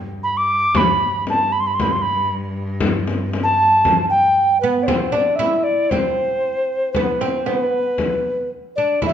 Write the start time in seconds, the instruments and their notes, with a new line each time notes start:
Already playing: cello G2
0.23 ocarina B5
0.37 ocarina D6
0.74 cello G2, ocarina B5, frame drum
1.27 ocarina A5, frame drum
1.52 ocarina B5
1.60 ocarina C6
1.67 ocarina B5
1.74 ocarina C6
1.80 ocarina B5, frame drum
1.92 ocarina C6
2.02 ocarina B5
2.80 frame drum
3.08 frame drum
3.33 frame drum
3.43 ocarina A5
3.85 frame drum
4.10 ocarina G5
4.61 oud B3, ocarina B4
4.83 ocarina C5 D5
4.88 oud C4, frame drum
5.12 oud D4, ocarina D5, frame drum
5.36 oud E4, ocarina E5
5.40 frame drum
5.63 ocarina D5
5.90 oud C4, ocarina C5, frame drum
6.92 oud B3, ocarina B4, frame drum
7.20 oud C4, ocarina C5, frame drum
7.46 oud B3, ocarina C5, frame drum
7.57 ocarina B4
7.98 frame drum
8.76 oud D4, ocarina D5
9.02 oud E4, ocarina E5, frame drum
9.09 oud E4